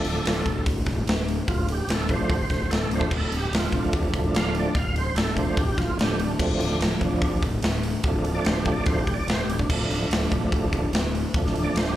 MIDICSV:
0, 0, Header, 1, 4, 480
1, 0, Start_track
1, 0, Key_signature, -1, "minor"
1, 0, Tempo, 410678
1, 1723, Time_signature, 4, 2, 24, 8
1, 13981, End_track
2, 0, Start_track
2, 0, Title_t, "Tonewheel organ"
2, 0, Program_c, 0, 16
2, 0, Note_on_c, 0, 53, 53
2, 0, Note_on_c, 0, 57, 48
2, 0, Note_on_c, 0, 62, 61
2, 0, Note_on_c, 0, 69, 105
2, 497, Note_off_c, 0, 57, 0
2, 499, Note_off_c, 0, 53, 0
2, 499, Note_off_c, 0, 62, 0
2, 733, Note_off_c, 0, 69, 0
2, 1733, Note_on_c, 0, 65, 91
2, 1960, Note_off_c, 0, 65, 0
2, 2013, Note_on_c, 0, 67, 78
2, 2220, Note_off_c, 0, 67, 0
2, 2260, Note_on_c, 0, 69, 83
2, 2451, Note_on_c, 0, 71, 66
2, 2462, Note_on_c, 0, 53, 54
2, 2463, Note_off_c, 0, 69, 0
2, 2471, Note_off_c, 0, 71, 0
2, 2479, Note_on_c, 0, 57, 49
2, 2480, Note_on_c, 0, 62, 64
2, 2495, Note_on_c, 0, 72, 91
2, 2770, Note_off_c, 0, 53, 0
2, 2779, Note_off_c, 0, 57, 0
2, 2779, Note_off_c, 0, 62, 0
2, 3162, Note_on_c, 0, 69, 89
2, 3165, Note_off_c, 0, 72, 0
2, 3392, Note_off_c, 0, 69, 0
2, 3420, Note_on_c, 0, 53, 49
2, 3432, Note_on_c, 0, 57, 46
2, 3435, Note_on_c, 0, 62, 54
2, 3452, Note_on_c, 0, 72, 95
2, 3626, Note_off_c, 0, 53, 0
2, 3632, Note_off_c, 0, 57, 0
2, 3634, Note_off_c, 0, 62, 0
2, 3658, Note_off_c, 0, 72, 0
2, 3701, Note_on_c, 0, 69, 76
2, 3902, Note_off_c, 0, 69, 0
2, 3933, Note_on_c, 0, 67, 78
2, 4138, Note_off_c, 0, 67, 0
2, 4169, Note_on_c, 0, 65, 98
2, 4386, Note_on_c, 0, 57, 51
2, 4392, Note_on_c, 0, 53, 57
2, 4408, Note_on_c, 0, 62, 63
2, 4608, Note_off_c, 0, 65, 0
2, 5101, Note_on_c, 0, 77, 107
2, 5319, Note_off_c, 0, 53, 0
2, 5321, Note_off_c, 0, 77, 0
2, 5332, Note_off_c, 0, 62, 0
2, 5333, Note_on_c, 0, 53, 53
2, 5340, Note_off_c, 0, 57, 0
2, 5346, Note_on_c, 0, 62, 55
2, 5354, Note_on_c, 0, 57, 47
2, 5367, Note_on_c, 0, 74, 83
2, 5541, Note_off_c, 0, 53, 0
2, 5548, Note_off_c, 0, 62, 0
2, 5552, Note_off_c, 0, 57, 0
2, 5562, Note_on_c, 0, 77, 79
2, 5575, Note_off_c, 0, 74, 0
2, 5791, Note_off_c, 0, 77, 0
2, 5816, Note_on_c, 0, 72, 88
2, 6035, Note_on_c, 0, 69, 93
2, 6038, Note_off_c, 0, 72, 0
2, 6259, Note_on_c, 0, 57, 51
2, 6262, Note_on_c, 0, 53, 57
2, 6268, Note_off_c, 0, 69, 0
2, 6271, Note_on_c, 0, 62, 65
2, 6297, Note_on_c, 0, 72, 92
2, 6513, Note_on_c, 0, 67, 90
2, 6519, Note_off_c, 0, 72, 0
2, 6586, Note_off_c, 0, 57, 0
2, 6587, Note_off_c, 0, 53, 0
2, 6592, Note_off_c, 0, 62, 0
2, 6747, Note_off_c, 0, 67, 0
2, 6753, Note_on_c, 0, 65, 96
2, 6986, Note_off_c, 0, 65, 0
2, 7025, Note_on_c, 0, 62, 60
2, 7026, Note_on_c, 0, 53, 52
2, 7030, Note_on_c, 0, 57, 49
2, 7051, Note_on_c, 0, 67, 104
2, 7228, Note_off_c, 0, 53, 0
2, 7228, Note_off_c, 0, 62, 0
2, 7230, Note_off_c, 0, 57, 0
2, 7250, Note_on_c, 0, 62, 98
2, 7257, Note_off_c, 0, 67, 0
2, 7467, Note_on_c, 0, 53, 58
2, 7469, Note_off_c, 0, 62, 0
2, 7483, Note_on_c, 0, 62, 58
2, 7490, Note_on_c, 0, 57, 47
2, 7502, Note_on_c, 0, 60, 89
2, 7719, Note_off_c, 0, 62, 0
2, 7722, Note_off_c, 0, 60, 0
2, 7733, Note_on_c, 0, 62, 94
2, 7958, Note_off_c, 0, 62, 0
2, 7987, Note_off_c, 0, 57, 0
2, 8001, Note_on_c, 0, 57, 88
2, 8212, Note_off_c, 0, 57, 0
2, 8218, Note_off_c, 0, 53, 0
2, 8232, Note_on_c, 0, 53, 80
2, 8244, Note_on_c, 0, 62, 95
2, 8662, Note_off_c, 0, 53, 0
2, 8687, Note_off_c, 0, 62, 0
2, 9417, Note_on_c, 0, 53, 57
2, 9430, Note_on_c, 0, 57, 48
2, 9435, Note_on_c, 0, 62, 58
2, 9758, Note_on_c, 0, 74, 94
2, 9875, Note_on_c, 0, 72, 90
2, 9895, Note_off_c, 0, 74, 0
2, 10033, Note_off_c, 0, 72, 0
2, 10046, Note_on_c, 0, 67, 82
2, 10191, Note_on_c, 0, 74, 88
2, 10199, Note_off_c, 0, 67, 0
2, 10304, Note_off_c, 0, 53, 0
2, 10313, Note_off_c, 0, 57, 0
2, 10318, Note_on_c, 0, 53, 52
2, 10327, Note_on_c, 0, 57, 45
2, 10332, Note_off_c, 0, 62, 0
2, 10346, Note_on_c, 0, 62, 56
2, 10351, Note_off_c, 0, 74, 0
2, 10358, Note_on_c, 0, 72, 93
2, 10515, Note_off_c, 0, 72, 0
2, 10527, Note_on_c, 0, 67, 82
2, 10554, Note_off_c, 0, 53, 0
2, 10559, Note_off_c, 0, 57, 0
2, 10570, Note_off_c, 0, 62, 0
2, 10680, Note_off_c, 0, 67, 0
2, 10682, Note_on_c, 0, 74, 94
2, 10838, Note_off_c, 0, 74, 0
2, 10864, Note_on_c, 0, 72, 93
2, 11009, Note_off_c, 0, 72, 0
2, 11028, Note_on_c, 0, 67, 90
2, 11171, Note_off_c, 0, 67, 0
2, 11211, Note_on_c, 0, 62, 92
2, 11331, Note_on_c, 0, 57, 50
2, 11343, Note_on_c, 0, 53, 51
2, 11344, Note_off_c, 0, 62, 0
2, 11358, Note_on_c, 0, 62, 57
2, 12525, Note_off_c, 0, 53, 0
2, 12537, Note_off_c, 0, 62, 0
2, 12539, Note_on_c, 0, 53, 52
2, 12541, Note_off_c, 0, 57, 0
2, 12551, Note_on_c, 0, 62, 58
2, 12555, Note_on_c, 0, 57, 49
2, 12750, Note_off_c, 0, 53, 0
2, 12756, Note_off_c, 0, 62, 0
2, 12758, Note_off_c, 0, 57, 0
2, 13274, Note_on_c, 0, 57, 50
2, 13279, Note_on_c, 0, 53, 56
2, 13302, Note_on_c, 0, 62, 57
2, 13602, Note_on_c, 0, 74, 96
2, 13741, Note_off_c, 0, 74, 0
2, 13756, Note_on_c, 0, 72, 87
2, 13898, Note_off_c, 0, 72, 0
2, 13899, Note_on_c, 0, 67, 90
2, 13981, Note_off_c, 0, 53, 0
2, 13981, Note_off_c, 0, 57, 0
2, 13981, Note_off_c, 0, 62, 0
2, 13981, Note_off_c, 0, 67, 0
2, 13981, End_track
3, 0, Start_track
3, 0, Title_t, "Fingered electric bass"
3, 0, Program_c, 1, 33
3, 47, Note_on_c, 1, 26, 88
3, 231, Note_off_c, 1, 26, 0
3, 294, Note_on_c, 1, 26, 81
3, 475, Note_off_c, 1, 26, 0
3, 536, Note_on_c, 1, 26, 88
3, 716, Note_off_c, 1, 26, 0
3, 775, Note_on_c, 1, 26, 93
3, 955, Note_off_c, 1, 26, 0
3, 1007, Note_on_c, 1, 26, 88
3, 1190, Note_off_c, 1, 26, 0
3, 1250, Note_on_c, 1, 26, 88
3, 1615, Note_off_c, 1, 26, 0
3, 1737, Note_on_c, 1, 26, 88
3, 2099, Note_off_c, 1, 26, 0
3, 2191, Note_on_c, 1, 26, 79
3, 2562, Note_off_c, 1, 26, 0
3, 2680, Note_on_c, 1, 26, 94
3, 2863, Note_off_c, 1, 26, 0
3, 2924, Note_on_c, 1, 26, 85
3, 3106, Note_off_c, 1, 26, 0
3, 3160, Note_on_c, 1, 26, 86
3, 3343, Note_off_c, 1, 26, 0
3, 3384, Note_on_c, 1, 26, 80
3, 3573, Note_off_c, 1, 26, 0
3, 3630, Note_on_c, 1, 26, 85
3, 3816, Note_off_c, 1, 26, 0
3, 3880, Note_on_c, 1, 26, 86
3, 4063, Note_off_c, 1, 26, 0
3, 4101, Note_on_c, 1, 26, 80
3, 4291, Note_off_c, 1, 26, 0
3, 4356, Note_on_c, 1, 26, 86
3, 4540, Note_off_c, 1, 26, 0
3, 4587, Note_on_c, 1, 26, 92
3, 4775, Note_off_c, 1, 26, 0
3, 4841, Note_on_c, 1, 26, 88
3, 5023, Note_off_c, 1, 26, 0
3, 5065, Note_on_c, 1, 26, 90
3, 5437, Note_off_c, 1, 26, 0
3, 5550, Note_on_c, 1, 26, 92
3, 5920, Note_off_c, 1, 26, 0
3, 6010, Note_on_c, 1, 26, 86
3, 6388, Note_off_c, 1, 26, 0
3, 6509, Note_on_c, 1, 26, 94
3, 6696, Note_off_c, 1, 26, 0
3, 6758, Note_on_c, 1, 26, 85
3, 6941, Note_off_c, 1, 26, 0
3, 6971, Note_on_c, 1, 26, 88
3, 7164, Note_off_c, 1, 26, 0
3, 7213, Note_on_c, 1, 26, 81
3, 7406, Note_off_c, 1, 26, 0
3, 7468, Note_on_c, 1, 26, 94
3, 7655, Note_off_c, 1, 26, 0
3, 7697, Note_on_c, 1, 26, 91
3, 7889, Note_off_c, 1, 26, 0
3, 7931, Note_on_c, 1, 26, 90
3, 8125, Note_off_c, 1, 26, 0
3, 8194, Note_on_c, 1, 26, 90
3, 8380, Note_off_c, 1, 26, 0
3, 8437, Note_on_c, 1, 26, 89
3, 8621, Note_off_c, 1, 26, 0
3, 8678, Note_on_c, 1, 26, 86
3, 8862, Note_off_c, 1, 26, 0
3, 8902, Note_on_c, 1, 26, 92
3, 9277, Note_off_c, 1, 26, 0
3, 9394, Note_on_c, 1, 26, 91
3, 9765, Note_off_c, 1, 26, 0
3, 9883, Note_on_c, 1, 26, 86
3, 10252, Note_off_c, 1, 26, 0
3, 10358, Note_on_c, 1, 26, 90
3, 10544, Note_off_c, 1, 26, 0
3, 10607, Note_on_c, 1, 26, 81
3, 10790, Note_off_c, 1, 26, 0
3, 10822, Note_on_c, 1, 26, 93
3, 11015, Note_off_c, 1, 26, 0
3, 11066, Note_on_c, 1, 26, 84
3, 11257, Note_off_c, 1, 26, 0
3, 11332, Note_on_c, 1, 26, 86
3, 11514, Note_off_c, 1, 26, 0
3, 11564, Note_on_c, 1, 26, 89
3, 11749, Note_off_c, 1, 26, 0
3, 11791, Note_on_c, 1, 26, 81
3, 11981, Note_off_c, 1, 26, 0
3, 12060, Note_on_c, 1, 26, 89
3, 12239, Note_off_c, 1, 26, 0
3, 12299, Note_on_c, 1, 26, 93
3, 12479, Note_off_c, 1, 26, 0
3, 12546, Note_on_c, 1, 26, 91
3, 12723, Note_off_c, 1, 26, 0
3, 12754, Note_on_c, 1, 26, 91
3, 13128, Note_off_c, 1, 26, 0
3, 13253, Note_on_c, 1, 26, 95
3, 13620, Note_off_c, 1, 26, 0
3, 13726, Note_on_c, 1, 26, 90
3, 13981, Note_off_c, 1, 26, 0
3, 13981, End_track
4, 0, Start_track
4, 0, Title_t, "Drums"
4, 55, Note_on_c, 9, 46, 57
4, 172, Note_off_c, 9, 46, 0
4, 299, Note_on_c, 9, 46, 79
4, 319, Note_on_c, 9, 38, 112
4, 416, Note_off_c, 9, 46, 0
4, 435, Note_off_c, 9, 38, 0
4, 535, Note_on_c, 9, 36, 77
4, 538, Note_on_c, 9, 46, 57
4, 652, Note_off_c, 9, 36, 0
4, 655, Note_off_c, 9, 46, 0
4, 775, Note_on_c, 9, 36, 109
4, 778, Note_on_c, 9, 46, 78
4, 891, Note_off_c, 9, 36, 0
4, 895, Note_off_c, 9, 46, 0
4, 1007, Note_on_c, 9, 46, 56
4, 1012, Note_on_c, 9, 36, 84
4, 1027, Note_on_c, 9, 38, 31
4, 1124, Note_off_c, 9, 46, 0
4, 1128, Note_off_c, 9, 36, 0
4, 1144, Note_off_c, 9, 38, 0
4, 1256, Note_on_c, 9, 46, 73
4, 1276, Note_on_c, 9, 38, 107
4, 1373, Note_off_c, 9, 46, 0
4, 1393, Note_off_c, 9, 38, 0
4, 1501, Note_on_c, 9, 46, 58
4, 1618, Note_off_c, 9, 46, 0
4, 1730, Note_on_c, 9, 36, 107
4, 1734, Note_on_c, 9, 46, 74
4, 1847, Note_off_c, 9, 36, 0
4, 1851, Note_off_c, 9, 46, 0
4, 1970, Note_on_c, 9, 46, 63
4, 2087, Note_off_c, 9, 46, 0
4, 2206, Note_on_c, 9, 46, 85
4, 2226, Note_on_c, 9, 38, 109
4, 2323, Note_off_c, 9, 46, 0
4, 2343, Note_off_c, 9, 38, 0
4, 2444, Note_on_c, 9, 36, 80
4, 2450, Note_on_c, 9, 46, 65
4, 2561, Note_off_c, 9, 36, 0
4, 2567, Note_off_c, 9, 46, 0
4, 2683, Note_on_c, 9, 36, 109
4, 2688, Note_on_c, 9, 46, 75
4, 2800, Note_off_c, 9, 36, 0
4, 2805, Note_off_c, 9, 46, 0
4, 2922, Note_on_c, 9, 36, 86
4, 2931, Note_on_c, 9, 46, 62
4, 2951, Note_on_c, 9, 38, 31
4, 3038, Note_off_c, 9, 36, 0
4, 3048, Note_off_c, 9, 46, 0
4, 3068, Note_off_c, 9, 38, 0
4, 3169, Note_on_c, 9, 46, 78
4, 3189, Note_on_c, 9, 38, 103
4, 3286, Note_off_c, 9, 46, 0
4, 3306, Note_off_c, 9, 38, 0
4, 3405, Note_on_c, 9, 46, 58
4, 3518, Note_on_c, 9, 36, 78
4, 3522, Note_off_c, 9, 46, 0
4, 3634, Note_off_c, 9, 36, 0
4, 3638, Note_on_c, 9, 36, 93
4, 3640, Note_on_c, 9, 49, 87
4, 3755, Note_off_c, 9, 36, 0
4, 3757, Note_off_c, 9, 49, 0
4, 3883, Note_on_c, 9, 46, 59
4, 4000, Note_off_c, 9, 46, 0
4, 4126, Note_on_c, 9, 46, 80
4, 4146, Note_on_c, 9, 38, 108
4, 4243, Note_off_c, 9, 46, 0
4, 4263, Note_off_c, 9, 38, 0
4, 4354, Note_on_c, 9, 36, 80
4, 4361, Note_on_c, 9, 46, 57
4, 4471, Note_off_c, 9, 36, 0
4, 4478, Note_off_c, 9, 46, 0
4, 4595, Note_on_c, 9, 36, 107
4, 4602, Note_on_c, 9, 46, 72
4, 4712, Note_off_c, 9, 36, 0
4, 4719, Note_off_c, 9, 46, 0
4, 4834, Note_on_c, 9, 36, 89
4, 4840, Note_on_c, 9, 46, 55
4, 4951, Note_off_c, 9, 36, 0
4, 4956, Note_off_c, 9, 46, 0
4, 5080, Note_on_c, 9, 46, 74
4, 5100, Note_on_c, 9, 38, 117
4, 5197, Note_off_c, 9, 46, 0
4, 5217, Note_off_c, 9, 38, 0
4, 5315, Note_on_c, 9, 46, 57
4, 5432, Note_off_c, 9, 46, 0
4, 5551, Note_on_c, 9, 36, 111
4, 5554, Note_on_c, 9, 46, 76
4, 5668, Note_off_c, 9, 36, 0
4, 5671, Note_off_c, 9, 46, 0
4, 5796, Note_on_c, 9, 46, 60
4, 5913, Note_off_c, 9, 46, 0
4, 6033, Note_on_c, 9, 46, 85
4, 6053, Note_on_c, 9, 38, 118
4, 6150, Note_off_c, 9, 46, 0
4, 6170, Note_off_c, 9, 38, 0
4, 6273, Note_on_c, 9, 36, 76
4, 6284, Note_on_c, 9, 46, 65
4, 6390, Note_off_c, 9, 36, 0
4, 6401, Note_off_c, 9, 46, 0
4, 6513, Note_on_c, 9, 36, 112
4, 6516, Note_on_c, 9, 46, 85
4, 6630, Note_off_c, 9, 36, 0
4, 6633, Note_off_c, 9, 46, 0
4, 6754, Note_on_c, 9, 36, 84
4, 6764, Note_on_c, 9, 46, 60
4, 6784, Note_on_c, 9, 38, 34
4, 6871, Note_off_c, 9, 36, 0
4, 6881, Note_off_c, 9, 46, 0
4, 6901, Note_off_c, 9, 38, 0
4, 7002, Note_on_c, 9, 46, 78
4, 7022, Note_on_c, 9, 38, 112
4, 7119, Note_off_c, 9, 46, 0
4, 7139, Note_off_c, 9, 38, 0
4, 7241, Note_on_c, 9, 46, 65
4, 7358, Note_off_c, 9, 46, 0
4, 7474, Note_on_c, 9, 36, 106
4, 7476, Note_on_c, 9, 57, 98
4, 7591, Note_off_c, 9, 36, 0
4, 7593, Note_off_c, 9, 57, 0
4, 7720, Note_on_c, 9, 46, 63
4, 7837, Note_off_c, 9, 46, 0
4, 7956, Note_on_c, 9, 46, 81
4, 7976, Note_on_c, 9, 38, 109
4, 8073, Note_off_c, 9, 46, 0
4, 8093, Note_off_c, 9, 38, 0
4, 8194, Note_on_c, 9, 36, 78
4, 8194, Note_on_c, 9, 46, 61
4, 8311, Note_off_c, 9, 36, 0
4, 8311, Note_off_c, 9, 46, 0
4, 8436, Note_on_c, 9, 36, 106
4, 8437, Note_on_c, 9, 46, 73
4, 8552, Note_off_c, 9, 36, 0
4, 8554, Note_off_c, 9, 46, 0
4, 8679, Note_on_c, 9, 36, 86
4, 8684, Note_on_c, 9, 46, 59
4, 8796, Note_off_c, 9, 36, 0
4, 8801, Note_off_c, 9, 46, 0
4, 8912, Note_on_c, 9, 46, 79
4, 8932, Note_on_c, 9, 38, 109
4, 9029, Note_off_c, 9, 46, 0
4, 9049, Note_off_c, 9, 38, 0
4, 9156, Note_on_c, 9, 46, 59
4, 9273, Note_off_c, 9, 46, 0
4, 9392, Note_on_c, 9, 46, 73
4, 9397, Note_on_c, 9, 36, 111
4, 9509, Note_off_c, 9, 46, 0
4, 9513, Note_off_c, 9, 36, 0
4, 9638, Note_on_c, 9, 46, 59
4, 9755, Note_off_c, 9, 46, 0
4, 9873, Note_on_c, 9, 46, 80
4, 9893, Note_on_c, 9, 38, 113
4, 9990, Note_off_c, 9, 46, 0
4, 10010, Note_off_c, 9, 38, 0
4, 10113, Note_on_c, 9, 46, 61
4, 10119, Note_on_c, 9, 36, 82
4, 10230, Note_off_c, 9, 46, 0
4, 10236, Note_off_c, 9, 36, 0
4, 10354, Note_on_c, 9, 46, 75
4, 10361, Note_on_c, 9, 36, 111
4, 10470, Note_off_c, 9, 46, 0
4, 10478, Note_off_c, 9, 36, 0
4, 10604, Note_on_c, 9, 36, 85
4, 10604, Note_on_c, 9, 46, 60
4, 10721, Note_off_c, 9, 36, 0
4, 10721, Note_off_c, 9, 46, 0
4, 10847, Note_on_c, 9, 46, 79
4, 10867, Note_on_c, 9, 38, 108
4, 10964, Note_off_c, 9, 46, 0
4, 10984, Note_off_c, 9, 38, 0
4, 11098, Note_on_c, 9, 46, 65
4, 11213, Note_on_c, 9, 36, 82
4, 11215, Note_off_c, 9, 46, 0
4, 11330, Note_off_c, 9, 36, 0
4, 11335, Note_on_c, 9, 36, 89
4, 11336, Note_on_c, 9, 49, 94
4, 11451, Note_off_c, 9, 36, 0
4, 11453, Note_off_c, 9, 49, 0
4, 11579, Note_on_c, 9, 46, 64
4, 11696, Note_off_c, 9, 46, 0
4, 11819, Note_on_c, 9, 46, 85
4, 11839, Note_on_c, 9, 38, 111
4, 11936, Note_off_c, 9, 46, 0
4, 11956, Note_off_c, 9, 38, 0
4, 12059, Note_on_c, 9, 36, 83
4, 12068, Note_on_c, 9, 46, 63
4, 12176, Note_off_c, 9, 36, 0
4, 12185, Note_off_c, 9, 46, 0
4, 12298, Note_on_c, 9, 36, 109
4, 12302, Note_on_c, 9, 46, 77
4, 12415, Note_off_c, 9, 36, 0
4, 12419, Note_off_c, 9, 46, 0
4, 12539, Note_on_c, 9, 36, 93
4, 12548, Note_on_c, 9, 46, 60
4, 12656, Note_off_c, 9, 36, 0
4, 12665, Note_off_c, 9, 46, 0
4, 12777, Note_on_c, 9, 46, 78
4, 12797, Note_on_c, 9, 38, 113
4, 12894, Note_off_c, 9, 46, 0
4, 12914, Note_off_c, 9, 38, 0
4, 13031, Note_on_c, 9, 46, 57
4, 13148, Note_off_c, 9, 46, 0
4, 13258, Note_on_c, 9, 36, 113
4, 13262, Note_on_c, 9, 46, 76
4, 13375, Note_off_c, 9, 36, 0
4, 13379, Note_off_c, 9, 46, 0
4, 13399, Note_on_c, 9, 38, 35
4, 13506, Note_on_c, 9, 46, 58
4, 13516, Note_off_c, 9, 38, 0
4, 13623, Note_off_c, 9, 46, 0
4, 13743, Note_on_c, 9, 46, 78
4, 13763, Note_on_c, 9, 38, 116
4, 13860, Note_off_c, 9, 46, 0
4, 13880, Note_off_c, 9, 38, 0
4, 13981, End_track
0, 0, End_of_file